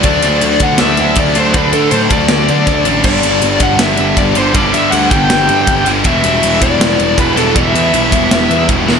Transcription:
<<
  \new Staff \with { instrumentName = "Lead electric guitar" } { \time 4/4 \key e \minor \tempo 4 = 160 d''4. fis''8 e''4 d''8 c''8 | b'8 a'8 c''8 d''2 r8 | d''4. fis''8 e''4 d''8 c''8 | d''8 e''8 fis''8 g''2 r8 |
e''4. d''4. b'8 a'8 | e''2. r4 | }
  \new Staff \with { instrumentName = "Distorted electric guitar" } { \clef bass \time 4/4 \key e \minor <d fis a d'>8 <d fis a d'>8 <d fis a d'>8 <d fis a d'>8 <d fis a d'>8 <d fis a d'>8 <d fis a d'>8 <d fis a d'>8 | <d fis a d'>8 <d fis a d'>8 <d fis a d'>8 <d fis a d'>8 <d fis a d'>8 <d fis a d'>8 <d fis a d'>8 <d fis a d'>8 | <g, d g b d'>8 <g, d g b d'>8 <g, d g b d'>8 <g, d g b d'>8 <g, d g b d'>8 <g, d g b d'>8 <g, d g b d'>8 <g, d g b d'>8 | <g, d g b d'>8 <g, d g b d'>8 <g, d g b d'>8 <g, d g b d'>8 <g, d g b d'>8 <g, d g b d'>8 <g, d g b d'>8 <g, d g b d'>8 |
<e g b e'>8 <e g b e'>8 <e g b e'>8 <e g b e'>8 <e g b e'>8 <e g b e'>8 <e g b e'>8 <e g b e'>8 | <e g b e'>8 <e g b e'>8 <e g b e'>8 <e g b e'>8 <e g b e'>8 <e g b e'>8 <e g b e'>8 <e g b e'>8 | }
  \new Staff \with { instrumentName = "Distorted electric guitar" } { \clef bass \time 4/4 \key e \minor <d a d'>2.~ <d a d'>8 <d a d'>8 | <d a d'>2.~ <d a d'>8 <d a d'>8 | <g, d g>2.~ <g, d g>8 <g, d g>8 | <g, d g>2.~ <g, d g>8 <g, d g>8 |
<e, b, e>2.~ <e, b, e>8 <e, b, e>8 | <e, b, e>2.~ <e, b, e>8 <e, b, e>8 | }
  \new Staff \with { instrumentName = "Distorted electric guitar" } { \clef bass \time 4/4 \key e \minor <d a d'>2.~ <d a d'>8 <d a d'>8 | <d a d'>2.~ <d a d'>8 <d a d'>8 | <g, d g>2.~ <g, d g>8 <g, d g>8 | <g, d g>2.~ <g, d g>8 <g, d g>8 |
<e, b, e>2.~ <e, b, e>8 <e, b, e>8 | <e, b, e>2.~ <e, b, e>8 <e, b, e>8 | }
  \new Staff \with { instrumentName = "Picked electric bass" } { \clef bass \time 4/4 \key e \minor d,8 d,8 d,8 d,8 d,8 d,8 d,8 d,8 | d,8 d8 a,8 d,8 d,8 d8 d,8 a,,8 | g,,8 g,,8 g,,8 g,,8 g,,8 g,,8 g,,8 g,,8 | g,,8 g,8 d,8 g,,8 g,,8 g,8 g,,8 g,,8 |
e,,8 e,,8 e,,8 e,,8 e,,8 e,,8 e,,8 e,,8 | e,,8 e,8 b,,8 e,,8 e,,8 e,8 e,,8 e,,8 | }
  \new DrumStaff \with { instrumentName = "Drums" } \drummode { \time 4/4 <bd cymr>8 cymr8 cymr8 <bd cymr>8 <cymr sn>8 cymr8 <bd cymr>8 cymr8 | <bd cymr>8 cymr8 cymr8 <bd cymr>8 <cymr sn>8 cymr8 <bd cymr>8 cymr8 | <cymc bd>8 cymr8 cymr8 <bd cymr>8 <cymr sn>8 cymr8 <bd cymr>8 cymr8 | <bd cymr>8 cymr8 cymr8 <bd cymr>8 <cymr sn>8 cymr8 <bd cymr>8 cymr8 |
<bd cymr>8 cymr8 cymr8 <bd cymr>8 <cymr sn>8 cymr8 <bd cymr>8 cymr8 | <bd cymr>8 cymr8 cymr8 <bd cymr>8 <cymr sn>8 cymr8 <bd cymr>8 sn8 | }
>>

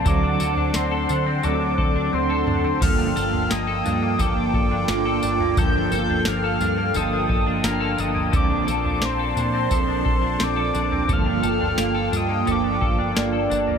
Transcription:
<<
  \new Staff \with { instrumentName = "Soft synth lead" } { \time 4/4 \key g \minor \tempo 4 = 87 d'''4 c'''4 d'''4 c'''4 | f'''4 ees'''4 d'''4 d'''4 | g'''8 g'''8 f'''4 ees'''4 f'''8 ees'''8 | d'''4 c'''8 c'''4. d'''4 |
f'''4. ees'''8 d'''4 d''4 | }
  \new Staff \with { instrumentName = "Analog synth pad" } { \time 4/4 \key g \minor << { <d' c'' fis''>1 | <bes f' g''>1~ | <bes f' g''>1 | <d' c'' a''>1 |
<bes f' g''>1 | } \\ { a'1~ | a'1~ | a'1 | r1 |
a'1 | } >> }
  \new Staff \with { instrumentName = "Clean electric guitar" } { \time 4/4 \key g \minor <fis a'>16 d'16 a'16 d'16 c'16 a'16 d'16 c'16 <fis a'>16 d'16 a'16 d'16 c'16 a'16 d'16 c'16 | <f a'>16 d'16 a'16 d'16 bes16 a'16 d'16 bes16 <f a'>16 d'16 a'16 d'16 bes16 a'16 d'16 bes16 | <f a'>16 d'16 a'16 d'16 bes16 a'16 d'16 bes16 <f a'>16 d'16 a'16 d'16 bes16 a'16 d'16 bes16 | <f a'>16 d'16 a'16 d'16 c'16 a'16 d'16 c'16 <f a'>16 d'16 a'16 d'16 c'16 a'16 d'16 c'16 |
<f a'>16 d'16 a'16 d'16 bes16 a'16 d'16 bes16 <f a'>16 d'16 a'16 d'16 bes16 a'16 d'16 bes16 | }
  \new Staff \with { instrumentName = "Clean electric guitar" } { \time 4/4 \key g \minor <d fis c' d' a'>8 <c' d' a'>4. <fis c' d' a'>4 <fis c' d' a'>4 | <g, d f bes d' a'>8 <f bes d'>4. <f bes d' a'>4 <f bes d' a'>4 | <g, d f bes d' a'>8 <f bes d' a'>4. <f bes d' a'>4 <f bes d' a'>4 | <bes, d f c' d' a'>8 <f c' d' a'>4. <f c' d' a'>4 <f c' d' a'>4 |
<g, d f bes d' a'>8 <f bes d' a'>4. <f bes d' a'>4 <f bes d' a'>4 | }
  \new Staff \with { instrumentName = "Picked electric bass" } { \clef bass \time 4/4 \key g \minor d,8 d,8 d,8 d8 d,8 d,8 d,8 d,8 | g,,8 g,,8 g,,8 g,8 g,,8 g,,8 g,,8 g,,8 | g,,8 g,,8 g,,8 g,8 g,,8 g,,8 g,,8 g,,8 | bes,,8 bes,,8 bes,,8 bes,8 bes,,8 bes,,8 bes,,8 bes,,8 |
g,,8 g,,8 g,,8 g,8 g,,8 g,,8 g,,8 g,,8 | }
  \new DrumStaff \with { instrumentName = "Drums" } \drummode { \time 4/4 <bd tamb tomfh>8 tamb16 tomfh16 <sn tamb>8 <tamb tomfh>8 <tamb tomfh>8 bd8 tommh8 toml16 tomfh16 | <cymc bd tamb tomfh>8 tamb16 tomfh16 <sn tamb>8 <tamb tomfh>8 <bd tamb tomfh>8 bd8 <sn tamb>8 tamb16 tomfh16 | <bd tamb tomfh>8 tamb16 tomfh16 <sn tamb>8 <tamb tomfh>8 <tamb tomfh>8 bd8 <sn tamb>8 tamb16 tomfh16 | <bd tamb tomfh>8 tamb16 tomfh16 <sn tamb>8 <tamb tomfh>8 <bd tamb tomfh>8 bd8 <sn tamb>8 tamb16 tomfh16 |
<bd tamb tomfh>8 tamb16 tomfh16 <sn tamb>8 <tamb tomfh>8 <tamb tomfh>8 bd8 <sn tamb>8 tamb16 tomfh16 | }
>>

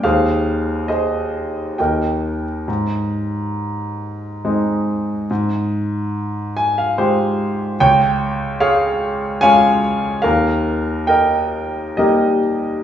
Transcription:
<<
  \new Staff \with { instrumentName = "Grand piano" } { \time 3/4 \key aes \major \tempo 4 = 70 << { f''4 ees''4 g''8. r16 | r2. | r4. aes''16 f''16 c''4 | g''4 f''4 aes''4 |
f''4 g''4 ees''4 | } \\ { <aes' c''>4 <aes' c''>4 <bes' ees''>4 | r2. | r2. | des''4 <aes' des''>4 <des'' f''>4 |
bes'4 <bes' ees''>4 <g' bes'>4 | } >> }
  \new Staff \with { instrumentName = "Grand piano" } { \clef bass \time 3/4 \key aes \major ees,2 ees,4 | aes,2 <aes c' ees'>4 | aes,2 <aes f' g'>4 | des,2 <aes des' f'>4 |
ees,2 <g bes ees'>4 | }
>>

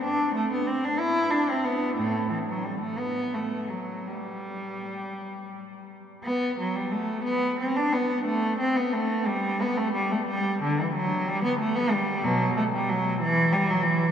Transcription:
\new Staff \with { instrumentName = "Cello" } { \time 6/8 \key g \major \tempo 4. = 60 d'8 a16 b16 c'16 d'16 e'8 d'16 c'16 b8 | <a, a>8 e16 fis16 g16 a16 b8 a8 fis8 | g2~ g8 r8 | b8 fis16 g16 a8 b8 c'16 d'16 b8 |
a8 c'16 b16 a8 g8 b16 a16 g16 a16 | g8 d16 e16 fis8 g16 b16 a16 b16 g8 | <b, fis>8 a16 g16 fis8 e8 g16 fis16 e8 | }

